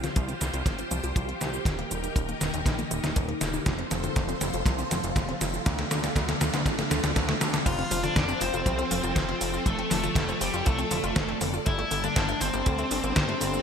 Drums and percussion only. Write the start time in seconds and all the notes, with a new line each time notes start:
0.04 snare, closed hi-hat, high tom, cabasa
0.16 kick, closed hi-hat, cabasa
0.29 closed hi-hat, cabasa
0.41 snare, closed hi-hat, cabasa
0.54 closed hi-hat, cabasa
0.66 kick, snare, closed hi-hat, cabasa
0.79 closed hi-hat, cabasa
0.91 closed hi-hat, cabasa
1.04 closed hi-hat, cabasa
1.16 kick, closed hi-hat, cabasa
1.29 closed hi-hat
1.41 snare, closed hi-hat, cabasa
1.54 cabasa
1.65 kick, snare, closed hi-hat, cabasa
1.79 closed hi-hat
1.91 closed hi-hat, cabasa
2.04 closed hi-hat, cabasa
2.16 kick, closed hi-hat, cabasa
2.29 closed hi-hat, cabasa
2.41 snare, closed hi-hat, cabasa
2.54 closed hi-hat, cabasa
2.66 kick, snare, closed hi-hat, cabasa
2.79 closed hi-hat, cabasa
2.91 closed hi-hat, cabasa
3.04 snare, closed hi-hat, cabasa
3.16 kick, closed hi-hat, cabasa
3.29 closed hi-hat
3.41 snare, closed hi-hat, high tom, cabasa
3.54 cabasa
3.66 kick, snare, closed hi-hat, cabasa
3.79 closed hi-hat
3.91 snare, closed hi-hat, cabasa
4.04 closed hi-hat, high tom, cabasa
4.16 kick, snare, closed hi-hat, cabasa
4.29 closed hi-hat, cabasa
4.41 snare, closed hi-hat, cabasa
4.54 closed hi-hat, cabasa
4.66 kick, snare, closed hi-hat, cabasa
4.79 closed hi-hat, cabasa
4.91 snare, closed hi-hat, cabasa
5.04 closed hi-hat, cabasa
5.16 kick, snare, closed hi-hat, cabasa
5.29 closed hi-hat
5.41 snare, closed hi-hat, cabasa
5.54 cabasa
5.66 kick, snare, closed hi-hat, cabasa
5.79 snare, closed hi-hat
5.91 snare, closed hi-hat, cabasa
6.04 snare, closed hi-hat, cabasa
6.16 kick, snare, closed hi-hat, cabasa
6.29 snare, closed hi-hat, cabasa
6.41 snare, closed hi-hat, cabasa
6.54 snare, closed hi-hat, cabasa
6.66 kick, snare, closed hi-hat, cabasa
6.79 snare, closed hi-hat, cabasa
6.91 snare, closed hi-hat, cabasa
7.04 snare, closed hi-hat, cabasa
7.16 kick, snare, closed hi-hat, cabasa
7.29 snare, closed hi-hat
7.41 snare, closed hi-hat, high tom, cabasa
7.54 snare, cabasa
7.66 kick, closed hi-hat, crash, cabasa
7.79 closed hi-hat
7.91 open hi-hat, cabasa
8.04 closed hi-hat, high tom, cabasa
8.16 kick, snare, closed hi-hat, cabasa
8.29 closed hi-hat, cabasa
8.41 open hi-hat, cabasa
8.54 closed hi-hat, cabasa
8.66 kick, closed hi-hat, cabasa
8.79 closed hi-hat, cabasa
8.91 open hi-hat, cabasa
9.04 closed hi-hat, cabasa
9.16 kick, snare, closed hi-hat, cabasa
9.29 closed hi-hat
9.41 open hi-hat, cabasa
9.54 cabasa
9.66 kick, closed hi-hat, cabasa
9.79 closed hi-hat
9.91 snare, open hi-hat, cabasa
10.04 closed hi-hat, high tom, cabasa
10.15 kick, snare, closed hi-hat, cabasa
10.29 closed hi-hat, cabasa
10.41 open hi-hat, cabasa
10.54 closed hi-hat, cabasa
10.66 kick, closed hi-hat, cabasa
10.79 closed hi-hat, cabasa
10.91 open hi-hat, high tom, cabasa
11.04 closed hi-hat, cabasa
11.16 kick, snare, closed hi-hat, cabasa
11.29 closed hi-hat
11.41 open hi-hat, high tom, cabasa
11.54 cabasa
11.66 kick, closed hi-hat, cabasa
11.79 closed hi-hat
11.91 open hi-hat, cabasa
12.04 closed hi-hat, high tom, cabasa
12.16 kick, snare, closed hi-hat, cabasa
12.29 closed hi-hat, cabasa
12.41 open hi-hat, cabasa
12.54 closed hi-hat, cabasa
12.66 kick, closed hi-hat, cabasa
12.79 closed hi-hat, cabasa
12.91 open hi-hat, cabasa
13.04 closed hi-hat, cabasa
13.16 kick, snare, closed hi-hat, cabasa
13.29 closed hi-hat
13.41 open hi-hat, cabasa
13.54 cabasa